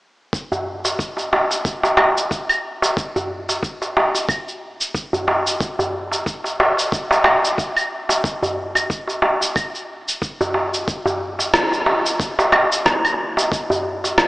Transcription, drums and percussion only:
0.33 kick, shaker
0.52 darbuka dum, shaker
0.85 darbuka tek, shaker
0.99 kick, shaker
1.17 darbuka ka, shaker
1.33 darbuka tek
1.51 darbuka ka, shaker
1.65 kick, shaker
1.83 darbuka tek, shaker
1.97 darbuka tek, claves
2.17 shaker
2.31 kick, shaker
2.49 claves, shaker
2.82 darbuka ka, shaker
2.97 kick, shaker
3.16 darbuka dum, shaker
3.49 darbuka tek, shaker
3.63 kick, shaker
3.82 darbuka ka, shaker
3.97 darbuka tek
4.14 darbuka ka, shaker
4.29 kick, claves, shaker
4.48 shaker
4.81 shaker
4.95 kick, shaker
5.13 darbuka dum, shaker
5.27 darbuka ka, darbuka tek
5.47 shaker
5.61 kick, shaker
5.79 darbuka dum, shaker
6.12 darbuka tek, shaker
6.26 kick, shaker
6.44 darbuka ka, shaker
6.60 darbuka tek
6.77 darbuka ka, shaker
6.92 kick, shaker
7.11 darbuka tek, shaker
7.24 darbuka tek, claves
7.45 shaker
7.58 kick, shaker
7.77 claves, shaker
8.09 darbuka ka, shaker
8.24 kick, shaker
8.43 darbuka dum, shaker
8.75 darbuka tek, claves, shaker
8.90 kick, shaker
9.07 darbuka ka, shaker
9.22 darbuka tek
9.41 darbuka ka, shaker
9.56 kick, claves, shaker
9.75 shaker
10.08 shaker
10.22 kick, shaker
10.41 darbuka dum, shaker
10.54 darbuka ka, darbuka tek
10.74 shaker
10.88 kick, shaker
11.06 darbuka dum, shaker
11.39 darbuka tek, shaker
11.54 kick, cross-stick, shaker
11.71 darbuka ka, shaker
11.86 darbuka tek
12.05 darbuka ka, shaker
12.20 kick, shaker
12.39 darbuka tek, shaker
12.52 darbuka tek, claves
12.72 shaker
12.86 kick, cross-stick, shaker
13.05 claves, shaker
13.37 darbuka ka, shaker
13.52 kick, shaker
13.70 darbuka dum, shaker
14.04 darbuka tek, shaker
14.18 kick, cross-stick, shaker

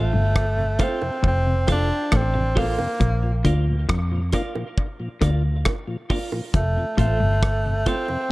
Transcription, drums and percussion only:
0.36 kick, cross-stick
0.79 kick, closed hi-hat, low bongo
1.02 high bongo
1.24 kick
1.67 kick, cross-stick, closed hi-hat, high bongo
2.12 kick, cross-stick, high bongo
2.57 kick, open hi-hat, low bongo
2.79 high bongo
3.01 kick, hi-hat pedal
3.45 kick, closed hi-hat
3.89 kick, cross-stick
4.33 kick, closed hi-hat, low bongo
4.55 high bongo
4.78 kick
5.22 kick, cross-stick, closed hi-hat, high bongo
5.65 kick, cross-stick, high bongo
6.10 kick, open hi-hat, low bongo
6.32 high bongo
6.54 kick, hi-hat pedal
6.98 kick, closed hi-hat
7.43 kick, cross-stick
7.86 kick, closed hi-hat, low bongo
8.08 high bongo

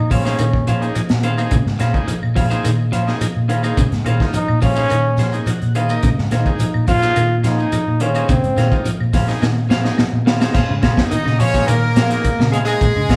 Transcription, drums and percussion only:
0.11 kick, open hi-hat, shekere
0.26 snare, shekere
0.39 closed hi-hat, claves, shekere
0.53 kick
0.67 closed hi-hat, shekere
0.82 closed hi-hat, shekere
0.95 closed hi-hat, claves, shekere
1.09 snare, closed hi-hat
1.23 closed hi-hat, shekere
1.38 claves, shekere
1.51 kick, closed hi-hat, shekere
1.67 snare
1.79 snare, closed hi-hat, claves, shekere
1.94 kick, shekere
2.08 closed hi-hat, shekere
2.23 claves
2.36 kick, open hi-hat, shekere
2.51 closed hi-hat, shekere
2.65 closed hi-hat, claves, shekere
2.93 closed hi-hat, shekere
3.08 snare, shekere
3.21 closed hi-hat, claves, shekere
3.50 closed hi-hat, shekere
3.64 closed hi-hat, claves, shekere
3.77 kick, closed hi-hat, shekere
3.92 snare, closed hi-hat
4.06 closed hi-hat, claves, shekere
4.20 kick, snare, shekere
4.33 closed hi-hat, shekere
4.48 claves
4.62 kick, open hi-hat, shekere
4.76 shekere
4.90 closed hi-hat, claves, shekere
5.17 snare, closed hi-hat, shekere
5.32 closed hi-hat, shekere
5.46 closed hi-hat, claves, shekere
5.62 closed hi-hat
5.75 closed hi-hat, shekere
5.89 claves, shekere
6.03 kick, closed hi-hat, shekere
6.18 snare
6.31 snare, closed hi-hat, claves, shekere
6.46 kick, shekere
6.59 closed hi-hat, shekere
6.74 claves
6.87 kick, open hi-hat, shekere
7.02 snare, closed hi-hat, shekere
7.16 closed hi-hat, claves, shekere
7.44 snare, closed hi-hat, shekere
7.59 shekere
7.72 closed hi-hat, claves, shekere
8.00 closed hi-hat, shekere
8.15 closed hi-hat, claves, shekere
8.29 kick, closed hi-hat, shekere
8.44 closed hi-hat
8.57 snare, closed hi-hat, claves, shekere
8.72 kick, shekere
8.85 closed hi-hat, shekere
9.00 claves
9.13 kick, snare, open hi-hat, shekere
9.28 snare, shekere
9.42 snare, claves, shekere
9.71 snare, shekere
9.85 snare, shekere
9.98 snare, claves, shekere
10.27 snare, shekere
10.41 snare, claves, shekere
10.54 kick, snare, crash, shekere
10.83 kick, snare, closed hi-hat, claves, shekere
10.97 kick, snare, shekere
11.11 closed hi-hat, shekere
11.26 snare, claves
11.40 open hi-hat, shekere
11.54 kick, snare, closed hi-hat, shekere
11.68 closed hi-hat, claves, shekere
11.96 snare, closed hi-hat, shekere
12.11 snare, closed hi-hat, shekere
12.24 kick, closed hi-hat, claves, shekere
12.40 snare
12.53 closed hi-hat, shekere
12.67 claves, shekere
12.81 kick, closed hi-hat, shekere
13.09 kick, snare, closed hi-hat, claves, shekere

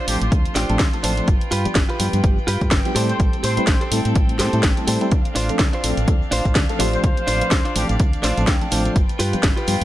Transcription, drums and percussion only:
0.08 open hi-hat, shaker
0.21 closed hi-hat, shaker
0.32 kick, closed hi-hat, shaker
0.45 closed hi-hat, shaker
0.55 snare, open hi-hat, shaker
0.69 closed hi-hat, shaker
0.79 kick, snare, closed hi-hat, shaker
0.93 closed hi-hat, shaker
1.03 open hi-hat, shaker
1.17 closed hi-hat, shaker
1.28 kick, closed hi-hat, shaker
1.41 closed hi-hat, shaker
1.51 open hi-hat, shaker
1.65 closed hi-hat, shaker
1.75 kick, snare, closed hi-hat, shaker
1.89 closed hi-hat, shaker
2.00 open hi-hat, shaker
2.13 closed hi-hat, shaker
2.24 kick, closed hi-hat, shaker
2.38 shaker
2.48 open hi-hat, shaker
2.61 kick, closed hi-hat, shaker
2.71 kick, snare, closed hi-hat, shaker
2.85 closed hi-hat, shaker
2.95 open hi-hat, shaker
3.09 closed hi-hat, shaker
3.20 kick, closed hi-hat, shaker
3.33 closed hi-hat, shaker
3.44 open hi-hat, shaker
3.57 closed hi-hat, shaker
3.67 kick, snare, closed hi-hat, shaker
3.81 closed hi-hat, shaker
3.92 open hi-hat, shaker
4.05 closed hi-hat, shaker
4.15 kick, closed hi-hat, shaker
4.29 closed hi-hat, shaker
4.39 snare, open hi-hat, shaker
4.53 closed hi-hat, shaker
4.63 kick, snare, closed hi-hat, shaker
4.77 closed hi-hat, shaker
4.88 open hi-hat, shaker
5.01 closed hi-hat, shaker
5.12 kick, closed hi-hat, shaker
5.25 closed hi-hat, shaker
5.36 open hi-hat, shaker
5.49 closed hi-hat, shaker
5.59 kick, snare, closed hi-hat
5.73 closed hi-hat, shaker
5.84 open hi-hat, shaker
5.97 closed hi-hat, shaker
6.08 kick, closed hi-hat, shaker
6.22 shaker
6.32 open hi-hat, shaker
6.45 kick, closed hi-hat, shaker
6.55 kick, snare, closed hi-hat, shaker
6.69 closed hi-hat, shaker
6.80 open hi-hat, shaker
6.93 closed hi-hat, shaker
7.04 kick, closed hi-hat, shaker
7.17 closed hi-hat, shaker
7.27 open hi-hat, shaker
7.41 closed hi-hat, shaker
7.51 kick, snare, closed hi-hat, shaker
7.65 closed hi-hat, shaker
7.76 open hi-hat, shaker
7.89 closed hi-hat, shaker
8.00 kick, closed hi-hat, shaker
8.13 closed hi-hat, shaker
8.23 snare, open hi-hat, shaker
8.37 closed hi-hat, shaker
8.47 kick, snare, closed hi-hat
8.61 closed hi-hat, shaker
8.71 open hi-hat, shaker
8.85 closed hi-hat, shaker
8.96 kick, closed hi-hat, shaker
9.09 closed hi-hat, shaker
9.19 open hi-hat, shaker
9.33 closed hi-hat, shaker
9.43 kick, snare, closed hi-hat, shaker
9.57 closed hi-hat, shaker
9.67 open hi-hat, shaker

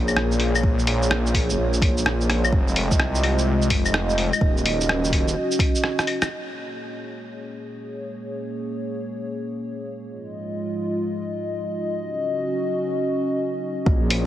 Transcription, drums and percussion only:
0.08 claves, shaker
0.17 cross-stick
0.32 shaker
0.40 open hi-hat
0.55 claves, shaker
0.63 kick
0.79 shaker
0.87 open hi-hat
1.03 shaker
1.11 cross-stick
1.26 shaker
1.34 kick, open hi-hat
1.50 shaker
1.74 shaker
1.82 kick, open hi-hat
1.98 shaker
2.06 cross-stick
2.21 shaker
2.30 cross-stick, open hi-hat
2.44 claves, shaker
2.53 kick
2.68 shaker
2.76 open hi-hat
2.91 kick, shaker
3.00 cross-stick
3.15 shaker
3.23 open hi-hat, claves
3.38 shaker
3.62 shaker
3.70 kick, open hi-hat
3.86 claves, shaker
3.94 cross-stick
4.09 shaker
4.18 open hi-hat
4.33 claves, shaker
4.41 kick
4.57 shaker
4.66 open hi-hat
4.81 shaker
4.89 cross-stick
5.05 shaker
5.12 kick, open hi-hat
5.28 shaker
5.52 shaker
5.59 kick, open hi-hat
5.75 shaker
5.84 cross-stick
5.99 cross-stick, shaker
6.07 open hi-hat, claves
6.22 cross-stick, claves, shaker
13.86 kick
14.10 open hi-hat

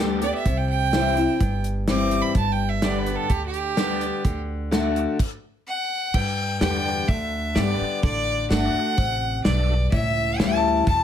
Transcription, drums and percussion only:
0.22 closed hi-hat
0.46 kick, closed hi-hat
0.93 snare, closed hi-hat
1.17 closed hi-hat
1.40 kick, closed hi-hat
1.64 closed hi-hat
1.88 snare, closed hi-hat
2.11 closed hi-hat
2.35 kick, closed hi-hat
2.82 snare, closed hi-hat
3.06 closed hi-hat
3.30 kick, closed hi-hat
3.54 closed hi-hat
3.77 snare, closed hi-hat
4.01 closed hi-hat
4.25 kick, closed hi-hat
4.72 snare, closed hi-hat
4.96 closed hi-hat
5.19 kick, crash
6.14 kick, crash
6.61 snare, open hi-hat
7.08 kick, open hi-hat
7.56 snare, open hi-hat
8.03 kick, open hi-hat
8.51 snare, open hi-hat
8.98 kick, open hi-hat
9.45 snare, open hi-hat
9.92 kick, open hi-hat
10.40 snare, open hi-hat
10.87 kick, open hi-hat

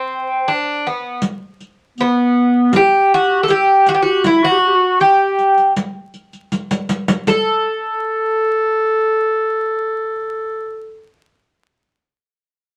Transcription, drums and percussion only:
1.22 riq
1.61 riq
1.98 riq
2.73 riq
3.48 riq
3.86 riq
4.24 riq
5.00 riq
5.39 riq
5.58 riq
5.76 riq
6.14 riq
6.33 riq
6.52 riq
6.71 riq
6.89 riq
7.08 riq
7.27 riq

